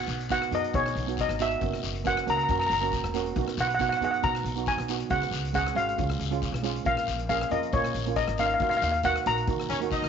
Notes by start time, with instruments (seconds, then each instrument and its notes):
Already playing: steel pan B3 D#4 F#4 F#5
0.07 upright bass B1, closed hi-hat, short guiro
0.20 closed hi-hat
0.29 steel pan B3 D#4 F#4 F#5, kick, closed hi-hat, short guiro
0.42 cross-stick
0.51 upright bass F#2, steel pan B3 D#4 F#4 D#5, closed hi-hat
0.64 closed hi-hat
0.73 upright bass B2, steel pan B3 D#4 G#4 C#5, kick, closed hi-hat, long guiro
0.86 cross-stick
0.95 upright bass B1, closed hi-hat
1.07 steel pan B3 D#4 F#4, closed hi-hat
1.17 steel pan D#5, kick, closed hi-hat, short guiro
1.29 upright bass G#1, cross-stick
1.39 steel pan B3 D#4 F#4 E5, closed hi-hat, short guiro
1.51 closed hi-hat
1.61 upright bass F#1, steel pan A#3 C#4 F#4, kick, closed hi-hat, long guiro
1.73 cross-stick
1.83 upright bass F#1, closed hi-hat, short guiro
1.95 closed hi-hat
2.04 steel pan A#3 C#4 F#4 F#5, kick, closed hi-hat, short guiro
2.17 cross-stick
2.26 upright bass C#2, steel pan A#3 C#4 F#4 A#5, closed hi-hat
2.37 steel pan A#5, closed hi-hat
2.43 steel pan A#5
2.49 upright bass F#2, steel pan A#3 C#4 F#4 A#5, kick, closed hi-hat, long guiro
2.59 steel pan A#5, cross-stick
2.67 upright bass F#1, steel pan A#5
2.71 steel pan A#5, closed hi-hat
2.81 steel pan A#3 C#4 F#4 A#5, closed hi-hat
2.92 kick, closed hi-hat, short guiro
3.04 upright bass E1, cross-stick
3.14 steel pan A#3 C#4 F#4, closed hi-hat, short guiro
3.26 closed hi-hat
3.36 upright bass B1, steel pan B3 D#4 F#4, kick, closed hi-hat, long guiro
3.48 cross-stick
3.57 upright bass B1, steel pan F#5, closed hi-hat, short guiro
3.68 steel pan F#5, closed hi-hat
3.75 steel pan F#5
3.79 steel pan B3 D#4 F#4 F#5, kick, closed hi-hat, short guiro
3.89 steel pan F#5, cross-stick
3.97 upright bass F#2, steel pan B3 F#5
4.02 steel pan D#4 G#4 F#5, closed hi-hat
4.11 steel pan F#5, closed hi-hat
4.22 upright bass B2, steel pan B3 D#4 F#4 A#5, kick, closed hi-hat, long guiro
4.35 cross-stick
4.44 upright bass B1, closed hi-hat
4.56 steel pan B3 D#4 F#4, closed hi-hat
4.66 steel pan G#5, kick, closed hi-hat, short guiro
4.78 upright bass B1, cross-stick
4.88 steel pan B3 D#4 F#4, closed hi-hat, short guiro
5.00 closed hi-hat
5.09 upright bass C#2, steel pan G#3 C#4 F#4 F#5, kick, closed hi-hat, long guiro
5.22 cross-stick
5.31 upright bass C#2, closed hi-hat, short guiro
5.45 closed hi-hat
5.53 steel pan G#3 C#4 G#4 F#5, kick, closed hi-hat, short guiro
5.66 cross-stick
5.75 upright bass G#1, steel pan G#3 C#4 F#4 F5, closed hi-hat
5.89 closed hi-hat
5.98 upright bass C#2, steel pan G#3 C#4 F4, kick, closed hi-hat, long guiro
6.10 cross-stick
6.19 upright bass C#2, closed hi-hat
6.30 steel pan G#3 C#4 F4, closed hi-hat
6.42 kick, closed hi-hat, short guiro
6.52 upright bass B1, cross-stick
6.63 steel pan G#3 C#4 F4, closed hi-hat, short guiro
6.76 closed hi-hat
6.85 upright bass A#1, steel pan A#3 C#4 F4 F5, kick, closed hi-hat, long guiro
6.97 cross-stick
7.07 upright bass A#1, closed hi-hat, short guiro
7.19 closed hi-hat
7.29 steel pan A#3 C#4 G#4 F5, kick, closed hi-hat, short guiro
7.41 cross-stick
7.51 upright bass F2, steel pan A#3 C#4 F4 D#5, closed hi-hat
7.63 closed hi-hat
7.73 upright bass A#2, steel pan A#3 C#4 F4 C#5, kick, closed hi-hat, long guiro
7.84 cross-stick
7.94 upright bass A#1, closed hi-hat
8.06 steel pan A#3 C#4 F4, closed hi-hat
8.16 steel pan D#5, kick, closed hi-hat, short guiro
8.28 upright bass G#1, cross-stick
8.38 steel pan A#3 C#4 D#4 F5, closed hi-hat, short guiro
8.46 steel pan F5, closed hi-hat
8.54 steel pan F5
8.60 upright bass D#2, steel pan A#3 D#4 F#4 F5, kick, closed hi-hat, long guiro
8.69 steel pan F5, cross-stick
8.77 steel pan F5
8.82 upright bass D#2, steel pan F5, closed hi-hat, short guiro
8.92 steel pan F5, closed hi-hat
9.03 steel pan A#3 D#4 F#4 F#5, kick, closed hi-hat, short guiro
9.16 cross-stick
9.26 upright bass A#1, steel pan A#3 D#4 F#4 A#5, closed hi-hat
9.37 closed hi-hat
9.47 upright bass D#3, steel pan A#3 D#4 F#4, kick, closed hi-hat, long guiro
9.60 cross-stick
9.69 upright bass D#2, horn section C#4 C#5, closed hi-hat
9.80 steel pan A#3 D#4 F#4, closed hi-hat
9.91 horn section D#4 D#5, kick, closed hi-hat, short guiro
10.02 upright bass C#2, cross-stick